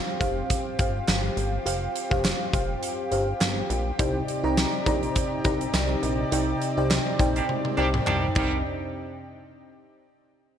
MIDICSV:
0, 0, Header, 1, 6, 480
1, 0, Start_track
1, 0, Key_signature, -3, "minor"
1, 0, Tempo, 582524
1, 1370, Time_signature, 4, 2, 24, 8
1, 8719, End_track
2, 0, Start_track
2, 0, Title_t, "FM electric piano"
2, 0, Program_c, 0, 5
2, 0, Control_c, 0, 64, 127
2, 0, Note_on_c, 0, 67, 84
2, 0, Note_on_c, 0, 72, 80
2, 0, Note_on_c, 0, 77, 100
2, 164, Note_off_c, 0, 67, 0
2, 164, Note_on_c, 0, 67, 84
2, 170, Note_off_c, 0, 72, 0
2, 170, Note_on_c, 0, 72, 81
2, 175, Note_off_c, 0, 77, 0
2, 175, Note_on_c, 0, 77, 100
2, 489, Note_off_c, 0, 67, 0
2, 493, Note_off_c, 0, 72, 0
2, 495, Note_off_c, 0, 77, 0
2, 650, Note_on_c, 0, 67, 85
2, 654, Note_on_c, 0, 72, 79
2, 660, Note_on_c, 0, 77, 93
2, 1123, Note_off_c, 0, 67, 0
2, 1125, Note_off_c, 0, 72, 0
2, 1128, Note_off_c, 0, 77, 0
2, 1364, Note_on_c, 0, 67, 87
2, 1369, Note_on_c, 0, 72, 80
2, 1373, Note_on_c, 0, 77, 102
2, 1604, Note_off_c, 0, 67, 0
2, 1606, Note_off_c, 0, 72, 0
2, 1608, Note_off_c, 0, 77, 0
2, 1733, Note_on_c, 0, 67, 91
2, 1740, Note_on_c, 0, 72, 83
2, 1745, Note_on_c, 0, 77, 98
2, 1974, Note_off_c, 0, 67, 0
2, 1977, Note_off_c, 0, 72, 0
2, 1979, Note_off_c, 0, 77, 0
2, 2087, Note_on_c, 0, 67, 84
2, 2091, Note_on_c, 0, 72, 81
2, 2096, Note_on_c, 0, 77, 94
2, 2411, Note_off_c, 0, 67, 0
2, 2413, Note_off_c, 0, 72, 0
2, 2415, Note_off_c, 0, 77, 0
2, 2567, Note_on_c, 0, 67, 84
2, 2571, Note_on_c, 0, 72, 79
2, 2576, Note_on_c, 0, 77, 94
2, 3042, Note_off_c, 0, 67, 0
2, 3044, Note_off_c, 0, 72, 0
2, 3046, Note_off_c, 0, 77, 0
2, 3286, Note_on_c, 0, 63, 84
2, 3290, Note_on_c, 0, 67, 78
2, 3292, Note_on_c, 0, 48, 72
2, 3292, Note_on_c, 0, 72, 84
2, 3294, Note_on_c, 0, 74, 79
2, 3297, Note_on_c, 0, 79, 100
2, 3302, Control_c, 0, 64, 0
2, 3426, Control_c, 0, 64, 127
2, 3525, Note_off_c, 0, 63, 0
2, 3526, Note_off_c, 0, 67, 0
2, 3528, Note_off_c, 0, 72, 0
2, 3528, Note_off_c, 0, 74, 0
2, 3530, Note_off_c, 0, 79, 0
2, 3655, Note_on_c, 0, 63, 89
2, 3656, Note_on_c, 0, 67, 77
2, 3659, Note_on_c, 0, 72, 78
2, 3661, Note_on_c, 0, 74, 81
2, 3665, Note_on_c, 0, 82, 100
2, 3894, Note_off_c, 0, 63, 0
2, 3895, Note_off_c, 0, 67, 0
2, 3896, Note_off_c, 0, 72, 0
2, 3897, Note_off_c, 0, 74, 0
2, 3899, Note_off_c, 0, 82, 0
2, 3978, Note_off_c, 0, 48, 0
2, 4006, Note_on_c, 0, 63, 87
2, 4009, Note_on_c, 0, 67, 81
2, 4012, Note_on_c, 0, 72, 80
2, 4014, Note_on_c, 0, 74, 82
2, 4016, Note_on_c, 0, 82, 100
2, 4331, Note_off_c, 0, 63, 0
2, 4332, Note_off_c, 0, 67, 0
2, 4333, Note_off_c, 0, 72, 0
2, 4334, Note_off_c, 0, 74, 0
2, 4335, Note_off_c, 0, 82, 0
2, 4484, Note_on_c, 0, 63, 82
2, 4485, Note_on_c, 0, 67, 76
2, 4488, Note_on_c, 0, 72, 73
2, 4491, Note_on_c, 0, 74, 75
2, 4493, Note_on_c, 0, 82, 96
2, 4960, Note_off_c, 0, 63, 0
2, 4961, Note_off_c, 0, 67, 0
2, 4962, Note_off_c, 0, 72, 0
2, 4964, Note_off_c, 0, 74, 0
2, 4965, Note_off_c, 0, 82, 0
2, 5202, Note_on_c, 0, 63, 86
2, 5206, Note_on_c, 0, 67, 80
2, 5207, Note_on_c, 0, 72, 78
2, 5209, Note_on_c, 0, 48, 75
2, 5211, Note_on_c, 0, 74, 78
2, 5213, Note_on_c, 0, 79, 92
2, 5443, Note_off_c, 0, 63, 0
2, 5445, Note_off_c, 0, 67, 0
2, 5445, Note_off_c, 0, 72, 0
2, 5447, Note_off_c, 0, 74, 0
2, 5448, Note_off_c, 0, 79, 0
2, 5577, Note_on_c, 0, 63, 86
2, 5581, Note_on_c, 0, 67, 79
2, 5582, Note_on_c, 0, 72, 83
2, 5585, Note_on_c, 0, 74, 78
2, 5589, Note_on_c, 0, 79, 96
2, 5816, Note_off_c, 0, 63, 0
2, 5817, Note_off_c, 0, 67, 0
2, 5818, Note_off_c, 0, 72, 0
2, 5819, Note_off_c, 0, 74, 0
2, 5821, Note_off_c, 0, 79, 0
2, 5896, Note_off_c, 0, 48, 0
2, 5926, Note_on_c, 0, 63, 86
2, 5928, Note_on_c, 0, 67, 79
2, 5931, Note_on_c, 0, 72, 79
2, 5933, Note_on_c, 0, 74, 79
2, 5935, Note_on_c, 0, 79, 98
2, 6250, Note_off_c, 0, 63, 0
2, 6252, Note_off_c, 0, 67, 0
2, 6253, Note_off_c, 0, 72, 0
2, 6254, Note_off_c, 0, 74, 0
2, 6255, Note_off_c, 0, 79, 0
2, 6403, Note_on_c, 0, 63, 75
2, 6406, Note_on_c, 0, 67, 76
2, 6407, Note_on_c, 0, 72, 77
2, 6411, Note_on_c, 0, 74, 74
2, 6413, Note_on_c, 0, 79, 90
2, 6880, Note_off_c, 0, 63, 0
2, 6880, Note_off_c, 0, 74, 0
2, 6881, Note_off_c, 0, 67, 0
2, 6881, Note_off_c, 0, 79, 0
2, 6882, Note_off_c, 0, 72, 0
2, 6889, Note_on_c, 0, 63, 76
2, 6890, Note_on_c, 0, 36, 76
2, 6890, Note_on_c, 0, 72, 70
2, 6890, Note_on_c, 0, 74, 70
2, 6891, Note_on_c, 0, 79, 90
2, 6902, Control_c, 0, 64, 0
2, 6992, Control_c, 0, 64, 127
2, 7113, Note_off_c, 0, 36, 0
2, 7113, Note_off_c, 0, 63, 0
2, 7113, Note_off_c, 0, 72, 0
2, 7113, Note_off_c, 0, 74, 0
2, 7113, Note_off_c, 0, 79, 0
2, 7141, Control_c, 0, 64, 0
2, 8719, End_track
3, 0, Start_track
3, 0, Title_t, "Analog synth pad"
3, 0, Program_c, 1, 89
3, 0, Note_on_c, 1, 60, 87
3, 0, Note_on_c, 1, 65, 77
3, 0, Note_on_c, 1, 67, 101
3, 3256, Note_off_c, 1, 60, 0
3, 3260, Note_off_c, 1, 65, 0
3, 3286, Note_on_c, 1, 48, 88
3, 3287, Note_on_c, 1, 63, 81
3, 3287, Note_on_c, 1, 74, 81
3, 3288, Note_on_c, 1, 60, 78
3, 6855, Note_off_c, 1, 48, 0
3, 6855, Note_off_c, 1, 74, 0
3, 6856, Note_off_c, 1, 60, 0
3, 6856, Note_off_c, 1, 63, 0
3, 6861, Note_off_c, 1, 67, 0
3, 6890, Note_on_c, 1, 62, 72
3, 6891, Note_on_c, 1, 48, 74
3, 6891, Note_on_c, 1, 60, 68
3, 6892, Note_on_c, 1, 63, 69
3, 6892, Note_on_c, 1, 67, 84
3, 7113, Note_off_c, 1, 62, 0
3, 7114, Note_off_c, 1, 48, 0
3, 7114, Note_off_c, 1, 60, 0
3, 7114, Note_off_c, 1, 63, 0
3, 7114, Note_off_c, 1, 67, 0
3, 8719, End_track
4, 0, Start_track
4, 0, Title_t, "Horn section"
4, 0, Program_c, 2, 61
4, 6062, Note_on_c, 2, 51, 75
4, 6062, Note_on_c, 2, 55, 80
4, 6062, Note_on_c, 2, 62, 79
4, 6062, Note_on_c, 2, 67, 87
4, 6154, Note_off_c, 2, 51, 0
4, 6154, Note_off_c, 2, 55, 0
4, 6154, Note_off_c, 2, 62, 0
4, 6154, Note_off_c, 2, 67, 0
4, 6408, Note_on_c, 2, 62, 90
4, 6409, Note_on_c, 2, 51, 92
4, 6409, Note_on_c, 2, 55, 93
4, 6409, Note_on_c, 2, 67, 102
4, 6493, Note_off_c, 2, 51, 0
4, 6493, Note_off_c, 2, 55, 0
4, 6493, Note_off_c, 2, 62, 0
4, 6493, Note_off_c, 2, 67, 0
4, 6650, Note_on_c, 2, 55, 87
4, 6650, Note_on_c, 2, 62, 88
4, 6650, Note_on_c, 2, 67, 95
4, 6651, Note_on_c, 2, 51, 88
4, 6803, Note_off_c, 2, 55, 0
4, 6803, Note_off_c, 2, 62, 0
4, 6803, Note_off_c, 2, 67, 0
4, 6804, Note_off_c, 2, 51, 0
4, 6892, Note_on_c, 2, 51, 86
4, 6893, Note_on_c, 2, 55, 86
4, 6893, Note_on_c, 2, 62, 90
4, 6893, Note_on_c, 2, 67, 93
4, 7059, Note_off_c, 2, 51, 0
4, 7059, Note_off_c, 2, 55, 0
4, 7059, Note_off_c, 2, 67, 0
4, 7060, Note_off_c, 2, 62, 0
4, 8719, End_track
5, 0, Start_track
5, 0, Title_t, "Analog synth bass"
5, 0, Program_c, 3, 38
5, 170, Note_on_c, 3, 29, 88
5, 350, Note_off_c, 3, 29, 0
5, 651, Note_on_c, 3, 31, 91
5, 831, Note_off_c, 3, 31, 0
5, 890, Note_on_c, 3, 31, 111
5, 1070, Note_off_c, 3, 31, 0
5, 1128, Note_on_c, 3, 31, 94
5, 1309, Note_off_c, 3, 31, 0
5, 1366, Note_on_c, 3, 29, 115
5, 1548, Note_off_c, 3, 29, 0
5, 1740, Note_on_c, 3, 29, 97
5, 1921, Note_off_c, 3, 29, 0
5, 2087, Note_on_c, 3, 29, 93
5, 2268, Note_off_c, 3, 29, 0
5, 2566, Note_on_c, 3, 31, 101
5, 2747, Note_off_c, 3, 31, 0
5, 2806, Note_on_c, 3, 31, 102
5, 2988, Note_off_c, 3, 31, 0
5, 3048, Note_on_c, 3, 34, 99
5, 3229, Note_off_c, 3, 34, 0
5, 3289, Note_on_c, 3, 36, 119
5, 3469, Note_off_c, 3, 36, 0
5, 3657, Note_on_c, 3, 36, 105
5, 3839, Note_off_c, 3, 36, 0
5, 4008, Note_on_c, 3, 34, 94
5, 4188, Note_off_c, 3, 34, 0
5, 4490, Note_on_c, 3, 36, 89
5, 4670, Note_off_c, 3, 36, 0
5, 4729, Note_on_c, 3, 36, 104
5, 4909, Note_off_c, 3, 36, 0
5, 4967, Note_on_c, 3, 34, 97
5, 5148, Note_off_c, 3, 34, 0
5, 5211, Note_on_c, 3, 36, 116
5, 5390, Note_off_c, 3, 36, 0
5, 5581, Note_on_c, 3, 36, 87
5, 5762, Note_off_c, 3, 36, 0
5, 5929, Note_on_c, 3, 34, 91
5, 6109, Note_off_c, 3, 34, 0
5, 6409, Note_on_c, 3, 36, 90
5, 6590, Note_off_c, 3, 36, 0
5, 6651, Note_on_c, 3, 36, 102
5, 6830, Note_off_c, 3, 36, 0
5, 6888, Note_on_c, 3, 36, 99
5, 7112, Note_off_c, 3, 36, 0
5, 8719, End_track
6, 0, Start_track
6, 0, Title_t, "Drums"
6, 170, Note_on_c, 9, 36, 88
6, 173, Note_on_c, 9, 42, 62
6, 253, Note_off_c, 9, 36, 0
6, 256, Note_off_c, 9, 42, 0
6, 412, Note_on_c, 9, 42, 94
6, 414, Note_on_c, 9, 36, 92
6, 494, Note_off_c, 9, 42, 0
6, 496, Note_off_c, 9, 36, 0
6, 649, Note_on_c, 9, 42, 82
6, 653, Note_on_c, 9, 36, 95
6, 732, Note_off_c, 9, 42, 0
6, 735, Note_off_c, 9, 36, 0
6, 890, Note_on_c, 9, 39, 99
6, 890, Note_on_c, 9, 42, 93
6, 891, Note_on_c, 9, 38, 106
6, 893, Note_on_c, 9, 54, 63
6, 972, Note_off_c, 9, 39, 0
6, 973, Note_off_c, 9, 38, 0
6, 973, Note_off_c, 9, 42, 0
6, 976, Note_off_c, 9, 54, 0
6, 1131, Note_on_c, 9, 42, 76
6, 1213, Note_off_c, 9, 42, 0
6, 1372, Note_on_c, 9, 42, 106
6, 1454, Note_off_c, 9, 42, 0
6, 1611, Note_on_c, 9, 42, 80
6, 1694, Note_off_c, 9, 42, 0
6, 1741, Note_on_c, 9, 36, 83
6, 1824, Note_off_c, 9, 36, 0
6, 1848, Note_on_c, 9, 39, 92
6, 1850, Note_on_c, 9, 54, 69
6, 1851, Note_on_c, 9, 38, 118
6, 1851, Note_on_c, 9, 42, 98
6, 1930, Note_off_c, 9, 39, 0
6, 1932, Note_off_c, 9, 54, 0
6, 1934, Note_off_c, 9, 38, 0
6, 1934, Note_off_c, 9, 42, 0
6, 2088, Note_on_c, 9, 36, 86
6, 2093, Note_on_c, 9, 42, 66
6, 2171, Note_off_c, 9, 36, 0
6, 2175, Note_off_c, 9, 42, 0
6, 2329, Note_on_c, 9, 42, 96
6, 2411, Note_off_c, 9, 42, 0
6, 2568, Note_on_c, 9, 42, 81
6, 2650, Note_off_c, 9, 42, 0
6, 2809, Note_on_c, 9, 39, 91
6, 2809, Note_on_c, 9, 42, 93
6, 2810, Note_on_c, 9, 38, 97
6, 2812, Note_on_c, 9, 54, 63
6, 2891, Note_off_c, 9, 39, 0
6, 2892, Note_off_c, 9, 38, 0
6, 2892, Note_off_c, 9, 42, 0
6, 2895, Note_off_c, 9, 54, 0
6, 3051, Note_on_c, 9, 42, 76
6, 3133, Note_off_c, 9, 42, 0
6, 3290, Note_on_c, 9, 36, 123
6, 3290, Note_on_c, 9, 42, 106
6, 3372, Note_off_c, 9, 42, 0
6, 3373, Note_off_c, 9, 36, 0
6, 3530, Note_on_c, 9, 42, 77
6, 3612, Note_off_c, 9, 42, 0
6, 3768, Note_on_c, 9, 54, 69
6, 3770, Note_on_c, 9, 38, 116
6, 3770, Note_on_c, 9, 42, 96
6, 3773, Note_on_c, 9, 39, 96
6, 3851, Note_off_c, 9, 54, 0
6, 3852, Note_off_c, 9, 38, 0
6, 3852, Note_off_c, 9, 42, 0
6, 3855, Note_off_c, 9, 39, 0
6, 4008, Note_on_c, 9, 36, 84
6, 4009, Note_on_c, 9, 42, 66
6, 4090, Note_off_c, 9, 36, 0
6, 4092, Note_off_c, 9, 42, 0
6, 4143, Note_on_c, 9, 42, 51
6, 4225, Note_off_c, 9, 42, 0
6, 4248, Note_on_c, 9, 42, 91
6, 4251, Note_on_c, 9, 36, 92
6, 4331, Note_off_c, 9, 42, 0
6, 4334, Note_off_c, 9, 36, 0
6, 4487, Note_on_c, 9, 42, 82
6, 4491, Note_on_c, 9, 36, 93
6, 4569, Note_off_c, 9, 42, 0
6, 4573, Note_off_c, 9, 36, 0
6, 4622, Note_on_c, 9, 42, 56
6, 4705, Note_off_c, 9, 42, 0
6, 4727, Note_on_c, 9, 42, 92
6, 4728, Note_on_c, 9, 38, 96
6, 4730, Note_on_c, 9, 39, 94
6, 4730, Note_on_c, 9, 54, 64
6, 4810, Note_off_c, 9, 38, 0
6, 4810, Note_off_c, 9, 42, 0
6, 4812, Note_off_c, 9, 39, 0
6, 4813, Note_off_c, 9, 54, 0
6, 4968, Note_on_c, 9, 42, 74
6, 5051, Note_off_c, 9, 42, 0
6, 5208, Note_on_c, 9, 42, 103
6, 5291, Note_off_c, 9, 42, 0
6, 5451, Note_on_c, 9, 42, 74
6, 5533, Note_off_c, 9, 42, 0
6, 5689, Note_on_c, 9, 39, 92
6, 5690, Note_on_c, 9, 54, 69
6, 5691, Note_on_c, 9, 38, 113
6, 5691, Note_on_c, 9, 42, 98
6, 5771, Note_off_c, 9, 39, 0
6, 5772, Note_off_c, 9, 54, 0
6, 5773, Note_off_c, 9, 38, 0
6, 5773, Note_off_c, 9, 42, 0
6, 5928, Note_on_c, 9, 36, 83
6, 5931, Note_on_c, 9, 42, 67
6, 6011, Note_off_c, 9, 36, 0
6, 6014, Note_off_c, 9, 42, 0
6, 6064, Note_on_c, 9, 42, 53
6, 6146, Note_off_c, 9, 42, 0
6, 6172, Note_on_c, 9, 48, 58
6, 6254, Note_off_c, 9, 48, 0
6, 6302, Note_on_c, 9, 48, 58
6, 6385, Note_off_c, 9, 48, 0
6, 6408, Note_on_c, 9, 39, 66
6, 6490, Note_off_c, 9, 39, 0
6, 6542, Note_on_c, 9, 47, 68
6, 6624, Note_off_c, 9, 47, 0
6, 6647, Note_on_c, 9, 39, 92
6, 6649, Note_on_c, 9, 45, 87
6, 6729, Note_off_c, 9, 39, 0
6, 6731, Note_off_c, 9, 45, 0
6, 6886, Note_on_c, 9, 39, 82
6, 6889, Note_on_c, 9, 36, 103
6, 6889, Note_on_c, 9, 49, 82
6, 6969, Note_off_c, 9, 39, 0
6, 6971, Note_off_c, 9, 49, 0
6, 6972, Note_off_c, 9, 36, 0
6, 8719, End_track
0, 0, End_of_file